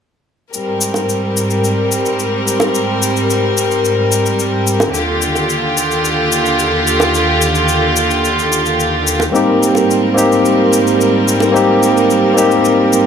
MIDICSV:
0, 0, Header, 1, 4, 480
1, 0, Start_track
1, 0, Tempo, 550459
1, 464, Time_signature, 4, 2, 24, 8
1, 11393, End_track
2, 0, Start_track
2, 0, Title_t, "Tine electric piano"
2, 0, Program_c, 0, 4
2, 8126, Note_on_c, 0, 58, 73
2, 8136, Note_on_c, 0, 60, 69
2, 8151, Note_on_c, 0, 63, 70
2, 8162, Note_on_c, 0, 67, 82
2, 8301, Control_c, 0, 64, 127
2, 8827, Note_off_c, 0, 58, 0
2, 8832, Note_off_c, 0, 60, 0
2, 8839, Note_off_c, 0, 63, 0
2, 8841, Note_on_c, 0, 58, 77
2, 8845, Note_off_c, 0, 67, 0
2, 8853, Note_on_c, 0, 60, 68
2, 8868, Note_on_c, 0, 63, 68
2, 8879, Note_on_c, 0, 67, 89
2, 10024, Note_off_c, 0, 58, 0
2, 10030, Note_off_c, 0, 60, 0
2, 10038, Note_off_c, 0, 63, 0
2, 10043, Note_off_c, 0, 67, 0
2, 10044, Note_on_c, 0, 58, 76
2, 10057, Note_on_c, 0, 60, 75
2, 10068, Note_on_c, 0, 63, 71
2, 10083, Note_on_c, 0, 67, 88
2, 10746, Note_off_c, 0, 58, 0
2, 10752, Note_off_c, 0, 60, 0
2, 10758, Note_off_c, 0, 63, 0
2, 10758, Note_on_c, 0, 58, 74
2, 10765, Note_off_c, 0, 67, 0
2, 10776, Note_on_c, 0, 60, 70
2, 10786, Note_on_c, 0, 63, 69
2, 10799, Note_on_c, 0, 67, 89
2, 11393, Note_off_c, 0, 58, 0
2, 11393, Note_off_c, 0, 60, 0
2, 11393, Note_off_c, 0, 63, 0
2, 11393, Note_off_c, 0, 67, 0
2, 11393, End_track
3, 0, Start_track
3, 0, Title_t, "String section"
3, 0, Program_c, 1, 48
3, 462, Note_on_c, 1, 55, 61
3, 462, Note_on_c, 1, 70, 72
3, 463, Note_on_c, 1, 44, 61
3, 465, Note_on_c, 1, 60, 60
3, 4268, Note_off_c, 1, 55, 0
3, 4268, Note_off_c, 1, 70, 0
3, 4269, Note_off_c, 1, 44, 0
3, 4270, Note_off_c, 1, 60, 0
3, 4294, Note_on_c, 1, 65, 64
3, 4298, Note_on_c, 1, 39, 68
3, 4299, Note_on_c, 1, 50, 63
3, 4299, Note_on_c, 1, 67, 76
3, 8104, Note_off_c, 1, 65, 0
3, 8106, Note_off_c, 1, 39, 0
3, 8106, Note_off_c, 1, 67, 0
3, 8107, Note_off_c, 1, 50, 0
3, 8135, Note_on_c, 1, 44, 71
3, 8135, Note_on_c, 1, 60, 67
3, 8139, Note_on_c, 1, 55, 62
3, 8139, Note_on_c, 1, 70, 71
3, 11393, Note_off_c, 1, 44, 0
3, 11393, Note_off_c, 1, 55, 0
3, 11393, Note_off_c, 1, 60, 0
3, 11393, Note_off_c, 1, 70, 0
3, 11393, End_track
4, 0, Start_track
4, 0, Title_t, "Drums"
4, 468, Note_on_c, 9, 82, 38
4, 555, Note_off_c, 9, 82, 0
4, 707, Note_on_c, 9, 82, 67
4, 794, Note_off_c, 9, 82, 0
4, 821, Note_on_c, 9, 60, 51
4, 835, Note_on_c, 9, 82, 29
4, 908, Note_off_c, 9, 60, 0
4, 922, Note_off_c, 9, 82, 0
4, 953, Note_on_c, 9, 82, 37
4, 1040, Note_off_c, 9, 82, 0
4, 1193, Note_on_c, 9, 82, 70
4, 1280, Note_off_c, 9, 82, 0
4, 1311, Note_on_c, 9, 82, 26
4, 1398, Note_off_c, 9, 82, 0
4, 1431, Note_on_c, 9, 82, 37
4, 1519, Note_off_c, 9, 82, 0
4, 1672, Note_on_c, 9, 82, 64
4, 1759, Note_off_c, 9, 82, 0
4, 1794, Note_on_c, 9, 82, 29
4, 1881, Note_off_c, 9, 82, 0
4, 1913, Note_on_c, 9, 82, 36
4, 2000, Note_off_c, 9, 82, 0
4, 2158, Note_on_c, 9, 82, 65
4, 2245, Note_off_c, 9, 82, 0
4, 2267, Note_on_c, 9, 60, 80
4, 2277, Note_on_c, 9, 82, 29
4, 2354, Note_off_c, 9, 60, 0
4, 2364, Note_off_c, 9, 82, 0
4, 2396, Note_on_c, 9, 82, 40
4, 2484, Note_off_c, 9, 82, 0
4, 2636, Note_on_c, 9, 82, 68
4, 2723, Note_off_c, 9, 82, 0
4, 2760, Note_on_c, 9, 82, 29
4, 2847, Note_off_c, 9, 82, 0
4, 2880, Note_on_c, 9, 82, 42
4, 2967, Note_off_c, 9, 82, 0
4, 3116, Note_on_c, 9, 82, 70
4, 3203, Note_off_c, 9, 82, 0
4, 3237, Note_on_c, 9, 82, 28
4, 3324, Note_off_c, 9, 82, 0
4, 3356, Note_on_c, 9, 82, 38
4, 3443, Note_off_c, 9, 82, 0
4, 3592, Note_on_c, 9, 82, 71
4, 3679, Note_off_c, 9, 82, 0
4, 3714, Note_on_c, 9, 82, 30
4, 3801, Note_off_c, 9, 82, 0
4, 3831, Note_on_c, 9, 82, 39
4, 3918, Note_off_c, 9, 82, 0
4, 4072, Note_on_c, 9, 82, 69
4, 4159, Note_off_c, 9, 82, 0
4, 4186, Note_on_c, 9, 60, 78
4, 4196, Note_on_c, 9, 82, 29
4, 4273, Note_off_c, 9, 60, 0
4, 4284, Note_off_c, 9, 82, 0
4, 4310, Note_on_c, 9, 82, 41
4, 4397, Note_off_c, 9, 82, 0
4, 4550, Note_on_c, 9, 82, 66
4, 4637, Note_off_c, 9, 82, 0
4, 4668, Note_on_c, 9, 60, 52
4, 4673, Note_on_c, 9, 82, 31
4, 4755, Note_off_c, 9, 60, 0
4, 4760, Note_off_c, 9, 82, 0
4, 4792, Note_on_c, 9, 82, 40
4, 4879, Note_off_c, 9, 82, 0
4, 5034, Note_on_c, 9, 82, 76
4, 5121, Note_off_c, 9, 82, 0
4, 5156, Note_on_c, 9, 82, 29
4, 5243, Note_off_c, 9, 82, 0
4, 5273, Note_on_c, 9, 82, 41
4, 5360, Note_off_c, 9, 82, 0
4, 5511, Note_on_c, 9, 82, 71
4, 5598, Note_off_c, 9, 82, 0
4, 5630, Note_on_c, 9, 82, 29
4, 5717, Note_off_c, 9, 82, 0
4, 5748, Note_on_c, 9, 82, 42
4, 5835, Note_off_c, 9, 82, 0
4, 5992, Note_on_c, 9, 82, 68
4, 6080, Note_off_c, 9, 82, 0
4, 6103, Note_on_c, 9, 60, 86
4, 6115, Note_on_c, 9, 82, 30
4, 6190, Note_off_c, 9, 60, 0
4, 6202, Note_off_c, 9, 82, 0
4, 6229, Note_on_c, 9, 82, 41
4, 6316, Note_off_c, 9, 82, 0
4, 6465, Note_on_c, 9, 82, 67
4, 6553, Note_off_c, 9, 82, 0
4, 6583, Note_on_c, 9, 82, 31
4, 6671, Note_off_c, 9, 82, 0
4, 6699, Note_on_c, 9, 82, 40
4, 6787, Note_off_c, 9, 82, 0
4, 6943, Note_on_c, 9, 82, 70
4, 7030, Note_off_c, 9, 82, 0
4, 7068, Note_on_c, 9, 82, 30
4, 7155, Note_off_c, 9, 82, 0
4, 7191, Note_on_c, 9, 82, 37
4, 7279, Note_off_c, 9, 82, 0
4, 7316, Note_on_c, 9, 82, 29
4, 7404, Note_off_c, 9, 82, 0
4, 7432, Note_on_c, 9, 82, 70
4, 7519, Note_off_c, 9, 82, 0
4, 7549, Note_on_c, 9, 82, 31
4, 7636, Note_off_c, 9, 82, 0
4, 7673, Note_on_c, 9, 82, 37
4, 7761, Note_off_c, 9, 82, 0
4, 7910, Note_on_c, 9, 82, 71
4, 7997, Note_off_c, 9, 82, 0
4, 8020, Note_on_c, 9, 60, 73
4, 8037, Note_on_c, 9, 82, 31
4, 8107, Note_off_c, 9, 60, 0
4, 8124, Note_off_c, 9, 82, 0
4, 8155, Note_on_c, 9, 82, 41
4, 8242, Note_off_c, 9, 82, 0
4, 8397, Note_on_c, 9, 82, 63
4, 8485, Note_off_c, 9, 82, 0
4, 8501, Note_on_c, 9, 60, 49
4, 8517, Note_on_c, 9, 82, 31
4, 8588, Note_off_c, 9, 60, 0
4, 8604, Note_off_c, 9, 82, 0
4, 8639, Note_on_c, 9, 82, 42
4, 8726, Note_off_c, 9, 82, 0
4, 8877, Note_on_c, 9, 82, 71
4, 8964, Note_off_c, 9, 82, 0
4, 9000, Note_on_c, 9, 82, 27
4, 9087, Note_off_c, 9, 82, 0
4, 9115, Note_on_c, 9, 82, 37
4, 9202, Note_off_c, 9, 82, 0
4, 9355, Note_on_c, 9, 82, 68
4, 9442, Note_off_c, 9, 82, 0
4, 9480, Note_on_c, 9, 82, 30
4, 9567, Note_off_c, 9, 82, 0
4, 9600, Note_on_c, 9, 82, 39
4, 9687, Note_off_c, 9, 82, 0
4, 9836, Note_on_c, 9, 82, 63
4, 9923, Note_off_c, 9, 82, 0
4, 9944, Note_on_c, 9, 60, 78
4, 9960, Note_on_c, 9, 82, 29
4, 10031, Note_off_c, 9, 60, 0
4, 10048, Note_off_c, 9, 82, 0
4, 10081, Note_on_c, 9, 82, 39
4, 10168, Note_off_c, 9, 82, 0
4, 10315, Note_on_c, 9, 82, 60
4, 10402, Note_off_c, 9, 82, 0
4, 10440, Note_on_c, 9, 82, 30
4, 10527, Note_off_c, 9, 82, 0
4, 10554, Note_on_c, 9, 82, 38
4, 10641, Note_off_c, 9, 82, 0
4, 10793, Note_on_c, 9, 82, 70
4, 10880, Note_off_c, 9, 82, 0
4, 10910, Note_on_c, 9, 82, 25
4, 10998, Note_off_c, 9, 82, 0
4, 11029, Note_on_c, 9, 82, 36
4, 11116, Note_off_c, 9, 82, 0
4, 11273, Note_on_c, 9, 82, 69
4, 11360, Note_off_c, 9, 82, 0
4, 11393, End_track
0, 0, End_of_file